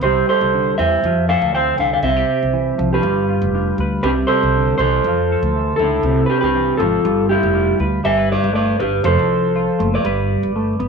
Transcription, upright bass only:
0.01 C2
0.41 C2
0.79 E2
1.04 F2
1.42 D2
1.78 C2
2.03 C2
2.43 C2
2.79 C2
3.03 G1
3.42 F1
3.78 D2
4.03 C2
4.43 C2
4.79 C2
5.04 F2
5.43 D2
5.79 C#2
6.03 C2
6.43 C2
6.80 G#1
7.05 G1
7.43 F1
7.80 D2
8.05 G1
8.44 G1
8.80 G1
9.04 F1
9.19 C2
9.80 F#1
10.05 G1
10.43 G1
10.80 G1

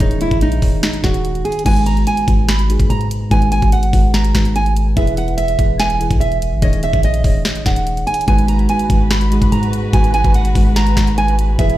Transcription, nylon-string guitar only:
0.00 D#4
0.21 E4
0.42 D#4
0.83 D#4
1.04 F#4
1.45 G#4
1.66 G#5
1.86 A#5
2.07 G#5
2.49 B5
2.90 A#5
3.31 G#5
3.52 G#5
3.73 F#5
4.14 A#5
4.56 G#5
4.97 E5
5.18 F#5
5.38 E5
5.80 G#5
6.20 E5
6.62 D#5
6.84 E5
7.04 D#5
7.45 D#5
7.66 F#5
8.07 G#5
8.28 G#5
8.49 A#5
8.69 G#5
9.11 B5
9.52 A#5
9.93 G#5
10.14 G#5
10.35 F#5
10.76 A#5
11.18 G#5
11.59 E5

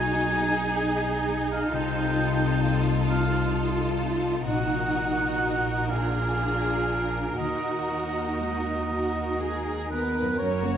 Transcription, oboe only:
Already playing: G#5
1.52 F5
1.75 G5
3.10 F5
4.47 F#5
5.90 F5
7.39 D#5
9.91 B4
10.39 C#5

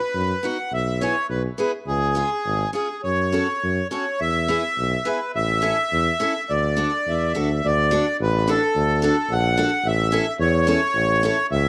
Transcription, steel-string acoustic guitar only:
0.43 B3 D#4 F#4
1.01 B3 E4 G#4
1.58 B3 E4 G#4
2.15 C#4 F4 G#4
2.73 C#4 F4 G#4
3.32 C#4 F#4 A4
3.91 C#4 F#4 A4
4.48 B3 E4 G#4
5.05 B3 E4 G#4
5.62 C#4 E4 A4
6.20 C#4 E4 A4
6.77 D4 F#4 A4
7.35 D4 F#4 A4
7.91 D4 F#4 A4
8.48 D4 F#4 A4
9.02 D4 F#4 A4
9.57 D4 F#4 A4
10.12 C#4 E4 A4
10.67 C#4 E4 A4
11.23 C#4 E4 A4

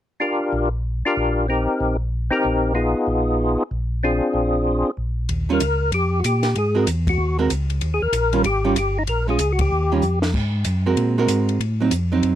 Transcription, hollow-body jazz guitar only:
5.49 D#3 G3 C#4 F4
6.75 G#3 C4 F#4 A#4
7.39 G#3 C4 F#4 A#4
8.33 D#3 G3 C#4 F4
8.64 D#3 G3 C#4 F4
9.28 G#3 C#4 F4
9.92 D#3 G3 C#4 F4
10.86 G#3 C4 F#4 A#4
11.18 G#3 C4 F#4 A#4
11.80 F#3 C4 D#4
12.12 F#3 C4 D#4

